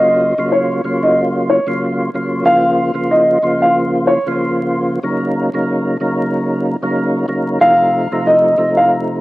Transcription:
0.00 0.34 C#3 loud
0.00 0.34 F#3 medium
0.00 0.34 A#3 medium
0.00 0.35 F4 loud
0.00 0.49 D#5 loud
0.38 0.81 C#3 medium
0.38 0.81 F#3 medium
0.38 0.81 A#3 medium
0.38 0.82 F4 loud
0.52 1.00 C#5 medium
0.84 1.60 C#3 medium
0.84 1.60 F#3 medium
0.84 1.60 A#3 medium
0.84 1.61 F4 loud
1.03 1.15 D#5 medium
1.50 1.66 C#5 medium
1.67 2.10 C#3 medium
1.67 2.10 F#3 medium
1.67 2.10 A#3 medium
1.67 2.11 F4 loud
2.14 2.43 C#3 medium
2.14 2.44 F#3 medium
2.14 2.44 A#3 medium
2.14 2.45 F4 medium
2.44 2.91 C#3 medium
2.44 2.92 F3 medium
2.44 2.92 A#3 medium
2.44 2.92 F4 loud
2.44 3.06 F5 loud
2.94 3.38 C#3 medium
2.94 3.38 F3 medium
2.94 3.38 A#3 medium
2.94 3.39 F4 medium
3.11 3.58 D#5 medium
3.42 4.18 C#3 medium
3.42 4.18 F3 medium
3.42 4.19 A#3 medium
3.42 4.19 F4 loud
3.62 3.74 F5 medium
4.07 4.24 C#5 medium
4.27 4.99 C#3 medium
4.27 4.99 F3 medium
4.27 4.99 A#3 medium
4.27 5.00 F4 loud
5.03 5.50 C#3 medium
5.03 5.50 F#3 medium
5.03 5.50 A#3 medium
5.03 5.50 D#4 loud
5.54 5.97 C#3 medium
5.54 5.97 F#3 medium
5.54 5.97 A#3 medium
5.54 5.98 D#4 loud
6.00 6.76 C#3 medium
6.00 6.76 F#3 medium
6.00 6.76 A#3 medium
6.00 6.77 D#4 loud
6.82 7.26 C#3 loud
6.82 7.26 F#3 medium
6.82 7.26 A#3 medium
6.82 7.26 D#4 loud
7.28 7.59 C#3 medium
7.28 7.59 F#3 medium
7.28 7.59 A#3 medium
7.28 7.60 D#4 medium
7.61 8.08 A3 medium
7.61 8.08 D#4 loud
7.61 8.22 F5 loud
8.12 8.55 C3 medium
8.12 8.55 F3 medium
8.12 8.55 A3 medium
8.12 8.56 D#4 loud
8.27 8.74 D#5 medium
8.58 9.21 C3 medium
8.58 9.21 F3 medium
8.58 9.21 A3 medium
8.58 9.21 D#4 medium
8.77 8.90 F5 medium

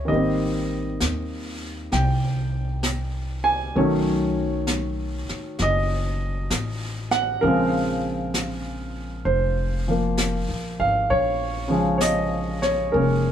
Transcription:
0.00 0.12 C#4 soft
0.00 0.10 E4 soft
0.00 0.10 C#5 medium
0.00 0.08 D#5 medium
0.05 0.97 G#1 medium
0.05 3.74 D#3 soft
0.05 3.76 G3 soft
0.05 1.58 D#5 medium
0.05 brush sweep soft
0.11 3.77 A#3 soft
0.15 3.79 C4 soft
1.00 1.88 D#2 medium
1.00 brush sweep soft
1.00 snare soft
1.00 hi-hat pedal soft
1.92 3.72 C2 medium
1.92 3.50 G5 medium
1.92 brush sweep soft
1.92 snare soft
2.83 brush sweep soft
2.83 snare soft
2.83 hi-hat pedal soft
3.44 3.73 G#5 medium
3.76 5.25 B1 medium
3.76 7.42 D#3 soft
3.76 7.42 F#3 soft
3.76 7.42 A3 soft
3.76 7.43 C#4 soft
3.76 5.25 C#5 medium
3.76 brush sweep soft
4.67 brush sweep soft
4.67 snare soft
4.67 hi-hat pedal soft
5.29 muted upright bass stroke soft
5.29 snare soft
5.59 6.47 F#1 medium
5.59 7.09 D#5 medium
5.59 brush sweep soft
5.59 snare soft
6.50 7.38 A1 medium
6.50 brush sweep soft
6.50 snare soft
6.50 hi-hat pedal soft
7.11 7.43 F#5 medium
7.11 snare soft
7.41 9.21 A#1 medium
7.41 11.08 C#3 medium
7.41 9.87 F3 soft
7.41 9.30 A#4 medium
7.41 brush sweep soft
7.46 11.10 G#3 soft
7.46 11.11 C4 medium
8.34 brush sweep soft
8.34 snare soft
8.34 hi-hat pedal soft
9.25 10.43 F1 medium
9.25 10.13 C5 medium
9.25 brush sweep soft
9.88 11.09 F3 soft
9.88 11.10 A#3 soft
10.18 brush sweep soft
10.18 snare soft
10.18 hi-hat pedal soft
10.49 10.76 A#1 soft
10.80 11.07 G#1 medium
10.80 11.10 F5 medium
11.09 12.89 A#1 medium
11.09 11.96 C#5 medium
11.09 brush sweep soft
11.68 13.32 C#3 soft
11.68 13.32 F3 soft
11.68 12.91 G#3 soft
11.98 12.01 C#5 medium
11.98 12.58 D#5 medium
11.98 brush sweep soft
11.98 snare soft
11.98 hi-hat pedal soft
12.62 12.93 C#5 medium
12.62 snare soft
12.92 13.32 F1 medium
12.92 13.32 G#3 soft
12.92 13.32 A#3 soft
12.92 13.32 C#4 soft
12.92 13.32 A#4 medium
12.92 brush sweep soft

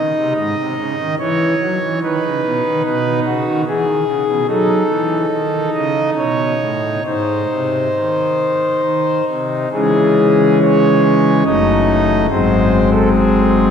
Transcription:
0.00 0.13 D#3 medium
0.00 1.13 D#4 soft
0.00 0.33 D#5 loud
0.17 0.34 C3 medium
0.36 0.53 G#2 medium
0.36 1.15 D#5 loud
0.58 0.74 C3 medium
0.78 0.95 C#3 medium
0.99 1.15 D#3 medium
1.20 1.54 E3 medium
1.20 1.99 C#5 loud
1.62 1.78 F#3 medium
1.82 1.98 E3 medium
2.03 2.19 D#3 medium
2.03 3.64 D#4 soft
2.03 2.82 B4 loud
2.24 2.41 C#3 medium
2.44 2.61 B2 medium
2.65 2.82 D#3 medium
2.84 3.20 B2 medium
2.84 3.20 B4 loud
3.26 3.44 C#3 medium
3.26 3.61 F#4 loud
3.46 3.64 D#3 medium
3.67 3.85 E3 medium
3.67 4.47 G#4 loud
3.86 4.04 D#3 medium
4.06 4.24 C#3 medium
4.27 4.45 B2 medium
4.47 4.83 F#3 medium
4.47 7.00 D#4 soft
4.47 5.70 A4 medium
4.90 5.25 E3 medium
5.32 5.68 D#3 medium
5.74 6.11 C#3 medium
5.74 6.11 D#5 medium
6.17 6.54 B2 medium
6.17 7.03 C#5 medium
6.60 6.99 A2 medium
7.05 7.44 G#2 medium
7.05 9.68 D#4 soft
7.05 9.24 C5 medium
7.49 7.88 C3 medium
7.95 8.81 D#3 medium
8.84 9.22 D#3 medium
9.28 9.66 C3 medium
9.73 11.43 C#3 medium
9.73 11.43 E3 soft
9.73 11.43 G#3 soft
9.73 11.42 C#4 soft
9.73 10.58 G#4 medium
10.61 11.44 C#5 medium
11.45 12.27 F#1 medium
11.45 12.27 F#2 medium
11.45 12.27 F#3 soft
11.45 12.27 A3 soft
11.45 12.27 D#4 soft
11.45 12.27 D#5 medium
12.30 13.71 G#1 medium
12.30 13.71 G#2 medium
12.30 13.71 F#3 soft
12.30 13.71 G#3 soft
12.30 13.71 C4 soft
12.30 12.90 C5 medium
12.91 13.09 A4 medium
13.12 13.71 G#4 medium

